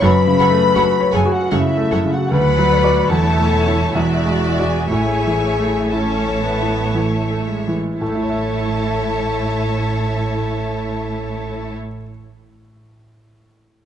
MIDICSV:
0, 0, Header, 1, 9, 480
1, 0, Start_track
1, 0, Key_signature, 3, "major"
1, 0, Tempo, 750939
1, 13, Time_signature, 3, 2, 24, 8
1, 973, Tempo, 793651
1, 1933, Tempo, 845070
1, 2413, Tempo, 949367
1, 2893, Tempo, 1018676
1, 3853, Tempo, 1058201
1, 4333, Tempo, 974026
1, 5293, Tempo, 1027397
1, 7117, End_track
2, 0, Start_track
2, 0, Title_t, "Flute"
2, 0, Program_c, 0, 73
2, 17, Note_on_c, 0, 83, 78
2, 542, Note_off_c, 0, 83, 0
2, 735, Note_on_c, 0, 80, 61
2, 848, Note_on_c, 0, 78, 60
2, 858, Note_off_c, 0, 80, 0
2, 964, Note_off_c, 0, 78, 0
2, 968, Note_on_c, 0, 76, 66
2, 1341, Note_on_c, 0, 78, 56
2, 1350, Note_off_c, 0, 76, 0
2, 1463, Note_on_c, 0, 83, 77
2, 1472, Note_off_c, 0, 78, 0
2, 1935, Note_on_c, 0, 81, 67
2, 1944, Note_off_c, 0, 83, 0
2, 2412, Note_on_c, 0, 76, 53
2, 2420, Note_off_c, 0, 81, 0
2, 2763, Note_on_c, 0, 80, 52
2, 2771, Note_off_c, 0, 76, 0
2, 2891, Note_off_c, 0, 80, 0
2, 2897, Note_on_c, 0, 80, 68
2, 3201, Note_off_c, 0, 80, 0
2, 3377, Note_on_c, 0, 81, 50
2, 4083, Note_off_c, 0, 81, 0
2, 4332, Note_on_c, 0, 81, 49
2, 6122, Note_off_c, 0, 81, 0
2, 7117, End_track
3, 0, Start_track
3, 0, Title_t, "Violin section"
3, 0, Program_c, 1, 48
3, 16, Note_on_c, 1, 83, 82
3, 732, Note_off_c, 1, 83, 0
3, 733, Note_on_c, 1, 80, 62
3, 853, Note_off_c, 1, 80, 0
3, 854, Note_on_c, 1, 78, 57
3, 972, Note_off_c, 1, 78, 0
3, 972, Note_on_c, 1, 76, 67
3, 1340, Note_off_c, 1, 76, 0
3, 1345, Note_on_c, 1, 78, 55
3, 1465, Note_off_c, 1, 78, 0
3, 1467, Note_on_c, 1, 83, 73
3, 1931, Note_on_c, 1, 81, 71
3, 1935, Note_off_c, 1, 83, 0
3, 2402, Note_off_c, 1, 81, 0
3, 2412, Note_on_c, 1, 76, 54
3, 2767, Note_off_c, 1, 76, 0
3, 2769, Note_on_c, 1, 80, 48
3, 2894, Note_off_c, 1, 80, 0
3, 2901, Note_on_c, 1, 80, 63
3, 3367, Note_off_c, 1, 80, 0
3, 3372, Note_on_c, 1, 81, 45
3, 4099, Note_off_c, 1, 81, 0
3, 4333, Note_on_c, 1, 81, 52
3, 6123, Note_off_c, 1, 81, 0
3, 7117, End_track
4, 0, Start_track
4, 0, Title_t, "Violin section"
4, 0, Program_c, 2, 48
4, 22, Note_on_c, 2, 78, 50
4, 23, Note_on_c, 2, 73, 54
4, 73, Note_off_c, 2, 78, 0
4, 75, Note_off_c, 2, 73, 0
4, 253, Note_on_c, 2, 73, 54
4, 253, Note_on_c, 2, 78, 53
4, 304, Note_off_c, 2, 78, 0
4, 305, Note_off_c, 2, 73, 0
4, 484, Note_on_c, 2, 73, 46
4, 487, Note_on_c, 2, 78, 53
4, 535, Note_off_c, 2, 73, 0
4, 538, Note_off_c, 2, 78, 0
4, 720, Note_on_c, 2, 78, 50
4, 723, Note_on_c, 2, 73, 47
4, 771, Note_off_c, 2, 78, 0
4, 774, Note_off_c, 2, 73, 0
4, 964, Note_on_c, 2, 78, 48
4, 967, Note_on_c, 2, 73, 54
4, 1013, Note_off_c, 2, 78, 0
4, 1015, Note_off_c, 2, 73, 0
4, 1209, Note_on_c, 2, 78, 45
4, 1211, Note_on_c, 2, 73, 47
4, 1257, Note_off_c, 2, 78, 0
4, 1259, Note_off_c, 2, 73, 0
4, 1455, Note_on_c, 2, 74, 52
4, 1461, Note_on_c, 2, 78, 56
4, 1905, Note_off_c, 2, 74, 0
4, 1908, Note_off_c, 2, 78, 0
4, 1932, Note_on_c, 2, 76, 52
4, 1936, Note_on_c, 2, 73, 54
4, 2403, Note_off_c, 2, 76, 0
4, 2412, Note_on_c, 2, 76, 51
4, 2414, Note_off_c, 2, 73, 0
4, 2415, Note_on_c, 2, 74, 52
4, 2883, Note_off_c, 2, 76, 0
4, 2894, Note_off_c, 2, 74, 0
4, 2894, Note_on_c, 2, 73, 53
4, 2894, Note_on_c, 2, 76, 47
4, 3363, Note_off_c, 2, 73, 0
4, 3363, Note_off_c, 2, 76, 0
4, 3369, Note_on_c, 2, 73, 53
4, 3369, Note_on_c, 2, 76, 46
4, 4195, Note_off_c, 2, 73, 0
4, 4195, Note_off_c, 2, 76, 0
4, 4336, Note_on_c, 2, 73, 49
4, 4338, Note_on_c, 2, 76, 47
4, 6124, Note_off_c, 2, 73, 0
4, 6125, Note_off_c, 2, 76, 0
4, 7117, End_track
5, 0, Start_track
5, 0, Title_t, "French horn section"
5, 0, Program_c, 3, 60
5, 18, Note_on_c, 3, 71, 88
5, 718, Note_off_c, 3, 71, 0
5, 718, Note_on_c, 3, 68, 73
5, 845, Note_off_c, 3, 68, 0
5, 852, Note_on_c, 3, 66, 76
5, 962, Note_on_c, 3, 64, 76
5, 973, Note_off_c, 3, 66, 0
5, 1335, Note_off_c, 3, 64, 0
5, 1350, Note_on_c, 3, 66, 62
5, 1453, Note_on_c, 3, 71, 80
5, 1467, Note_off_c, 3, 66, 0
5, 1927, Note_on_c, 3, 69, 83
5, 1928, Note_off_c, 3, 71, 0
5, 2363, Note_off_c, 3, 69, 0
5, 2371, Note_on_c, 3, 66, 55
5, 2411, Note_on_c, 3, 64, 59
5, 2415, Note_off_c, 3, 66, 0
5, 2766, Note_off_c, 3, 64, 0
5, 2770, Note_on_c, 3, 68, 58
5, 2887, Note_off_c, 3, 68, 0
5, 2893, Note_on_c, 3, 68, 61
5, 3363, Note_off_c, 3, 68, 0
5, 3377, Note_on_c, 3, 69, 56
5, 4101, Note_off_c, 3, 69, 0
5, 4336, Note_on_c, 3, 69, 52
5, 6124, Note_off_c, 3, 69, 0
5, 7117, End_track
6, 0, Start_track
6, 0, Title_t, "Viola section"
6, 0, Program_c, 4, 48
6, 11, Note_on_c, 4, 69, 54
6, 13, Note_on_c, 4, 54, 49
6, 62, Note_off_c, 4, 69, 0
6, 64, Note_off_c, 4, 54, 0
6, 254, Note_on_c, 4, 54, 50
6, 254, Note_on_c, 4, 69, 55
6, 305, Note_off_c, 4, 54, 0
6, 305, Note_off_c, 4, 69, 0
6, 484, Note_on_c, 4, 69, 50
6, 485, Note_on_c, 4, 54, 52
6, 535, Note_off_c, 4, 69, 0
6, 536, Note_off_c, 4, 54, 0
6, 726, Note_on_c, 4, 54, 46
6, 726, Note_on_c, 4, 69, 45
6, 777, Note_off_c, 4, 54, 0
6, 777, Note_off_c, 4, 69, 0
6, 966, Note_on_c, 4, 69, 54
6, 967, Note_on_c, 4, 54, 51
6, 1014, Note_off_c, 4, 69, 0
6, 1016, Note_off_c, 4, 54, 0
6, 1209, Note_on_c, 4, 54, 51
6, 1210, Note_on_c, 4, 69, 54
6, 1258, Note_off_c, 4, 54, 0
6, 1259, Note_off_c, 4, 69, 0
6, 1463, Note_on_c, 4, 71, 46
6, 1465, Note_on_c, 4, 54, 54
6, 1909, Note_off_c, 4, 71, 0
6, 1910, Note_off_c, 4, 54, 0
6, 1930, Note_on_c, 4, 57, 45
6, 1934, Note_on_c, 4, 64, 49
6, 2402, Note_off_c, 4, 57, 0
6, 2413, Note_off_c, 4, 64, 0
6, 2414, Note_on_c, 4, 56, 52
6, 2416, Note_on_c, 4, 66, 51
6, 2884, Note_off_c, 4, 56, 0
6, 2890, Note_on_c, 4, 57, 46
6, 2894, Note_off_c, 4, 66, 0
6, 2894, Note_on_c, 4, 64, 43
6, 3361, Note_off_c, 4, 57, 0
6, 3363, Note_off_c, 4, 64, 0
6, 3380, Note_on_c, 4, 61, 54
6, 3598, Note_off_c, 4, 61, 0
6, 3617, Note_on_c, 4, 59, 54
6, 3857, Note_off_c, 4, 59, 0
6, 3862, Note_on_c, 4, 57, 51
6, 4103, Note_off_c, 4, 57, 0
6, 4103, Note_on_c, 4, 56, 43
6, 4336, Note_off_c, 4, 56, 0
6, 4340, Note_on_c, 4, 57, 43
6, 4342, Note_on_c, 4, 64, 42
6, 6126, Note_off_c, 4, 57, 0
6, 6127, Note_off_c, 4, 64, 0
6, 7117, End_track
7, 0, Start_track
7, 0, Title_t, "Grand piano"
7, 0, Program_c, 5, 0
7, 0, Control_c, 5, 64, 127
7, 13, Note_on_c, 5, 42, 62
7, 25, Control_c, 5, 64, 0
7, 117, Control_c, 5, 64, 127
7, 175, Note_on_c, 5, 49, 45
7, 321, Note_on_c, 5, 57, 51
7, 427, Note_off_c, 5, 49, 0
7, 484, Note_on_c, 5, 66, 47
7, 581, Note_off_c, 5, 57, 0
7, 640, Note_on_c, 5, 73, 53
7, 744, Note_off_c, 5, 66, 0
7, 801, Note_on_c, 5, 66, 50
7, 903, Note_off_c, 5, 73, 0
7, 969, Note_on_c, 5, 49, 56
7, 1062, Note_off_c, 5, 66, 0
7, 1124, Note_on_c, 5, 57, 49
7, 1230, Note_off_c, 5, 49, 0
7, 1294, Note_on_c, 5, 49, 50
7, 1393, Note_off_c, 5, 57, 0
7, 1438, Note_off_c, 5, 42, 0
7, 1451, Note_on_c, 5, 38, 57
7, 1460, Note_off_c, 5, 49, 0
7, 1473, Control_c, 5, 64, 0
7, 1587, Control_c, 5, 64, 127
7, 1611, Note_on_c, 5, 54, 49
7, 1764, Note_on_c, 5, 66, 48
7, 1771, Note_on_c, 5, 74, 53
7, 1864, Note_off_c, 5, 54, 0
7, 1911, Note_off_c, 5, 66, 0
7, 1913, Note_off_c, 5, 38, 0
7, 1915, Note_off_c, 5, 74, 0
7, 1924, Note_on_c, 5, 40, 57
7, 1944, Control_c, 5, 64, 0
7, 2026, Control_c, 5, 64, 127
7, 2081, Note_on_c, 5, 57, 43
7, 2246, Note_on_c, 5, 64, 41
7, 2247, Note_on_c, 5, 73, 45
7, 2343, Note_off_c, 5, 57, 0
7, 2394, Note_off_c, 5, 40, 0
7, 2396, Note_off_c, 5, 64, 0
7, 2396, Note_off_c, 5, 73, 0
7, 2411, Note_on_c, 5, 40, 55
7, 2424, Control_c, 5, 64, 0
7, 2540, Control_c, 5, 64, 127
7, 2565, Note_on_c, 5, 56, 39
7, 2736, Note_on_c, 5, 66, 43
7, 2737, Note_on_c, 5, 74, 40
7, 2824, Note_off_c, 5, 56, 0
7, 2878, Note_off_c, 5, 40, 0
7, 2882, Note_off_c, 5, 66, 0
7, 2882, Note_off_c, 5, 74, 0
7, 2896, Note_on_c, 5, 45, 46
7, 2904, Control_c, 5, 64, 0
7, 3008, Control_c, 5, 64, 127
7, 3062, Note_on_c, 5, 52, 35
7, 3216, Note_on_c, 5, 57, 38
7, 3313, Note_off_c, 5, 52, 0
7, 3371, Note_on_c, 5, 64, 38
7, 3469, Note_off_c, 5, 57, 0
7, 3533, Note_on_c, 5, 73, 41
7, 3625, Note_off_c, 5, 64, 0
7, 3695, Note_on_c, 5, 64, 39
7, 3789, Note_off_c, 5, 73, 0
7, 3853, Note_on_c, 5, 52, 43
7, 3952, Note_off_c, 5, 64, 0
7, 4018, Note_on_c, 5, 57, 36
7, 4115, Note_off_c, 5, 52, 0
7, 4186, Note_on_c, 5, 52, 40
7, 4276, Note_off_c, 5, 57, 0
7, 4317, Note_off_c, 5, 45, 0
7, 4336, Note_off_c, 5, 52, 0
7, 4338, Note_on_c, 5, 45, 37
7, 4345, Control_c, 5, 64, 0
7, 4375, Note_on_c, 5, 57, 37
7, 4406, Note_on_c, 5, 64, 37
7, 4444, Note_on_c, 5, 73, 36
7, 4466, Control_c, 5, 64, 127
7, 4479, Note_on_c, 5, 76, 37
7, 6194, Note_off_c, 5, 45, 0
7, 6229, Note_off_c, 5, 57, 0
7, 6259, Note_off_c, 5, 64, 0
7, 6295, Note_off_c, 5, 73, 0
7, 6327, Note_off_c, 5, 76, 0
7, 7117, End_track
8, 0, Start_track
8, 0, Title_t, "Cello section"
8, 0, Program_c, 6, 48
8, 20, Note_on_c, 6, 42, 59
8, 71, Note_off_c, 6, 42, 0
8, 254, Note_on_c, 6, 42, 50
8, 305, Note_off_c, 6, 42, 0
8, 494, Note_on_c, 6, 42, 61
8, 546, Note_off_c, 6, 42, 0
8, 738, Note_on_c, 6, 42, 57
8, 789, Note_off_c, 6, 42, 0
8, 978, Note_on_c, 6, 42, 51
8, 1026, Note_off_c, 6, 42, 0
8, 1219, Note_on_c, 6, 42, 57
8, 1267, Note_off_c, 6, 42, 0
8, 1468, Note_on_c, 6, 38, 56
8, 1911, Note_off_c, 6, 38, 0
8, 1937, Note_on_c, 6, 40, 59
8, 2405, Note_off_c, 6, 40, 0
8, 2415, Note_on_c, 6, 40, 49
8, 2884, Note_off_c, 6, 40, 0
8, 2896, Note_on_c, 6, 45, 50
8, 4214, Note_off_c, 6, 45, 0
8, 4338, Note_on_c, 6, 45, 45
8, 6125, Note_off_c, 6, 45, 0
8, 7117, End_track
9, 0, Start_track
9, 0, Title_t, "Double bass section"
9, 0, Program_c, 7, 48
9, 17, Note_on_c, 7, 30, 59
9, 68, Note_off_c, 7, 30, 0
9, 249, Note_on_c, 7, 30, 55
9, 300, Note_off_c, 7, 30, 0
9, 487, Note_on_c, 7, 30, 57
9, 538, Note_off_c, 7, 30, 0
9, 726, Note_on_c, 7, 30, 63
9, 778, Note_off_c, 7, 30, 0
9, 969, Note_on_c, 7, 30, 52
9, 1017, Note_off_c, 7, 30, 0
9, 1212, Note_on_c, 7, 30, 57
9, 1260, Note_off_c, 7, 30, 0
9, 1458, Note_on_c, 7, 38, 53
9, 1906, Note_off_c, 7, 38, 0
9, 1931, Note_on_c, 7, 28, 54
9, 2402, Note_off_c, 7, 28, 0
9, 2413, Note_on_c, 7, 28, 52
9, 2883, Note_off_c, 7, 28, 0
9, 2894, Note_on_c, 7, 33, 49
9, 4213, Note_off_c, 7, 33, 0
9, 4336, Note_on_c, 7, 33, 46
9, 6124, Note_off_c, 7, 33, 0
9, 7117, End_track
0, 0, End_of_file